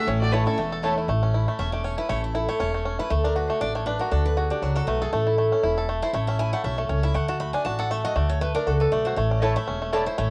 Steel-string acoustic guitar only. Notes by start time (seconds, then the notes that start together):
0.08 A2
0.31 E3 A3 C#4 E4
0.46 C#4 E4
0.58 E2
0.82 E3 A3 C#4 E4
1.59 E5
1.72 D5
1.84 C#5
1.98 B4
2.09 C#5
2.24 E4
2.35 A4
2.49 C#5
2.60 C#5
3.00 B4
3.10 A4
3.25 A#4
3.36 B4
3.50 C#5
3.61 D5
3.75 C#5
3.86 B4
3.99 A#4
4.11 A4
4.26 B4
4.37 G#4
4.50 G4
4.62 F#4
4.76 A4
4.87 B4
5.02 G#4
5.13 A4
6.02 C5
6.13 C#5
6.27 E5
6.39 G#5
6.53 F#5
6.64 E5
6.78 A4
6.89 C#5
7.03 E5
7.14 F#5
7.28 A5
7.40 B5
7.53 G#5
7.65 A5
7.79 F#5
7.91 E5
8.05 D#5
8.16 D5
8.29 C#5
8.41 B4
8.54 A#4
8.67 A4
8.80 B4
8.92 D5
9.05 C5
9.16 C#5
9.30 D5
9.42 E5
9.56 E5
9.93 D5
10.06 C5
10.18 C#5